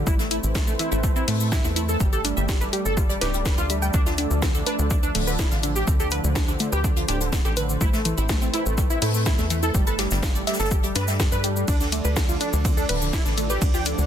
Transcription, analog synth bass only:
0.07 0.40 A1 loud
0.43 0.76 A1 loud
0.92 1.24 A1 loud
1.28 1.61 A2 loud
1.64 1.97 E2 loud
2.00 2.33 G1 loud
2.37 2.69 G1 loud
2.85 3.18 G1 loud
3.21 3.54 D1 loud
3.58 3.90 D2 loud
3.94 4.27 D2 loud
4.31 4.63 D2 loud
4.79 5.11 D2 medium
5.15 5.48 D1 loud
5.52 5.84 A1 loud
5.87 6.20 D2 loud
6.24 6.56 D2 loud
6.72 7.05 D2 loud
7.08 7.41 D1 loud
7.45 7.77 A1 loud
7.81 8.14 A1 loud
8.18 8.50 A1 loud
8.66 8.98 A1 loud
9.02 9.35 A2 loud
9.39 9.71 E2 loud
9.75 10.07 G1 loud
10.11 10.43 G1 loud
10.60 10.92 G1 loud
10.96 11.28 G2 loud
11.32 11.64 G2 medium
11.68 12.01 D2 loud
12.05 12.37 D2 loud
12.53 12.85 D2 loud
12.89 13.22 D1 loud
13.26 13.58 A1 loud
13.62 13.94 D2 loud
13.98 14.06 D2 loud

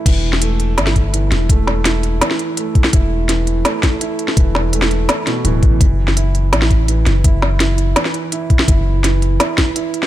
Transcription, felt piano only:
0.06 0.40 E3 medium
0.42 0.59 A3 medium
0.78 0.88 E4 medium
1.14 1.48 E3 medium
1.49 1.67 A3 medium
1.86 1.96 E4 medium
2.22 2.56 E3 medium
2.57 2.74 A3 medium
2.93 3.03 E4 medium
3.29 3.63 E3 medium
3.65 3.82 A3 medium
4.01 4.11 E4 medium
4.37 4.71 E3 medium
4.73 4.90 A3 medium
5.09 5.19 E4 medium
5.27 5.37 B2 medium
5.45 5.55 E3 loud
5.81 6.15 E3 medium
6.17 6.27 E4 medium
6.53 6.63 E4 medium
6.88 7.23 E3 medium
7.24 7.35 E4 medium
7.60 7.71 E4 medium
7.96 8.30 E3 medium
8.32 8.43 E4 medium
8.68 8.79 E4 medium
9.04 9.38 E3 medium
9.40 9.50 E4 medium
9.76 9.86 E4 medium

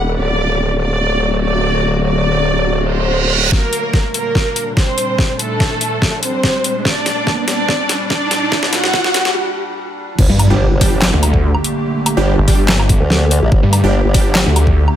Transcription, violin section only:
0.00 0.11 F#5 medium
0.19 0.73 D5 medium
0.81 1.36 D5 medium
1.44 1.98 D5 loud
2.06 2.81 D5 loud
2.89 3.44 C5 medium
3.52 4.06 A#3 medium
3.52 4.06 A#4 loud
4.14 4.69 A#3 medium
4.14 4.69 A#4 medium
4.77 5.31 C4 medium
4.77 5.31 C5 loud
5.39 6.15 A3 medium
5.39 6.15 A4 loud
6.23 6.77 C4 medium
6.23 6.77 C5 medium
6.85 7.40 D4 medium
6.85 7.40 D5 loud
7.48 8.02 D4 medium
7.48 8.02 D5 loud
8.10 8.65 D4 medium
8.10 8.65 D5 loud
8.73 9.35 F#4 medium
8.73 9.35 F#5 loud

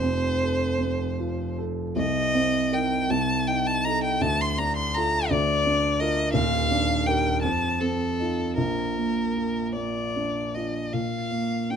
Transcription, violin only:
0.00 1.58 C5 medium
1.97 2.75 D#5 loud
2.73 3.12 G5 medium
3.10 3.49 A5 medium
3.48 3.68 G5 medium
3.67 3.86 A5 medium
3.85 4.03 A#5 medium
4.04 4.23 G5 medium
4.22 4.43 A5 loud
4.41 4.60 C6 medium
4.58 4.76 A#5 medium
4.77 4.96 C6 medium
4.95 5.32 A#5 medium
5.30 6.01 D5 medium
6.00 6.33 D#5 medium
6.34 7.08 F5 loud
7.06 7.42 G5 medium
7.43 7.82 A5 medium
7.81 8.57 A4 medium
8.58 9.74 A#4 medium
9.76 10.56 D5 medium
10.55 10.95 D#5 medium
10.94 11.72 F5 medium
11.70 11.76 G5 medium

